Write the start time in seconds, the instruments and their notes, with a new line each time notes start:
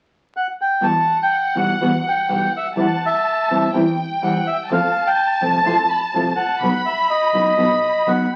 0.37 bandoneon F#5
0.61 bandoneon G5
0.81 double bass E2, nylon-string guitar B2 E3 G3 B3 F#4, violin section F#5, bandoneon A5
1.23 bandoneon G5
1.55 double bass B1, nylon-string guitar B2 E3 G3 B3 F#4
1.59 bandoneon F#5
1.81 double bass E2, nylon-string guitar B2 E3 G3 B3 F#4
2.08 bandoneon G5
2.29 double bass B1, nylon-string guitar B2 E3 G3 B3 F#4
2.57 bandoneon E5
2.76 double bass E2, nylon-string guitar C3 E3 G3 C4 E4, violin section A5
2.81 bandoneon F#5
3.06 bandoneon E5
3.50 double bass E2, nylon-string guitar C3 E3 G3 C4 E4
3.73 double bass E2, nylon-string guitar C3 E3 G3 C4 E4, violin section G5
4.22 double bass E2, nylon-string guitar C3 E3 G3 C4 E4, bandoneon F#5
4.47 bandoneon E5
4.67 double bass F2, nylon-string guitar C3 F3 A3 C4, violin section A5
4.72 nylon-string guitar F4, bandoneon F5
5.07 bandoneon G5
5.41 double bass C2, nylon-string guitar C3 F3 A3 C4 F4, bandoneon A5
5.65 double bass F2, nylon-string guitar C3 F3 A3 C4 F4, bandoneon C6
5.89 bandoneon B5
6.13 double bass C2, nylon-string guitar C3 F3 A3 C4 F4, bandoneon A5
6.36 bandoneon F#5
6.60 double bass B1, nylon-string guitar B2 F#3 B3 D#4, violin section B5
6.64 nylon-string guitar F#4
6.86 bandoneon E5
7.10 bandoneon D#5
7.33 double bass F#1, nylon-string guitar B2 F#3 B3 D#4 F#4
7.57 double bass B1, nylon-string guitar B2 F#3 B3 D#4 F#4, violin section B5
8.06 double bass F#1, nylon-string guitar B2 F#3 B3 D#4 F#4, bandoneon F#5